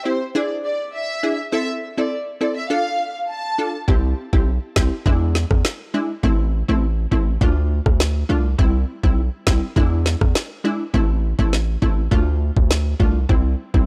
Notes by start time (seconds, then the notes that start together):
0.05 C4 E4 G4 C5
0.35 D4 E4 G#4 D5
0.65 D5
0.94 E5
1.23 D4 E4 G#4
1.52 C4 E4 A4 E5
1.98 C4 E4 A4 D5
2.41 C4 E4 A4 D5
2.57 E5
2.70 D4 F4 A4 F5
3.29 A5
3.58 D4 F4 A4
3.88 C2 C4 E4 G4, kick
4.33 B1 C4 E4 G4, kick
4.76 C2 C4 E4 G4, kick, snare
5.06 E2 G#3 D4 E4, kick
5.35 snare
5.51 E2, kick, cross-stick
5.65 snare
5.94 G#3 D4 E4
6.23 A1 A3 C4 E4, kick
6.68 A1 A3 C4 E4
7.11 A1 A3 C4 E4, kick
7.41 D2 A3 D4 F4, kick
7.86 D2, kick, cross-stick
8.00 snare
8.29 C2 A3 D4 F4
8.58 C2 G3 C4 E4, kick
9.03 B1 G3 C4 E4, kick
9.47 C2 G3 C4 E4, kick, snare
9.76 E2 G#3 D4 E4, kick
10.06 snare
10.21 E2, kick, cross-stick
10.35 snare
10.64 G#3 D4 E4
10.94 A1 A3 C4 E4, kick
11.39 A1 A3 C4 E4, kick
11.53 snare
11.82 A1 A3 C4 E4, kick
12.11 D2 A3 D4 F4, kick
12.57 D2, kick
12.71 snare
13.00 C2 A3 D4 F4, kick
13.29 C2 G3 C4 E4, kick
13.74 B1 G3 C4 E4, kick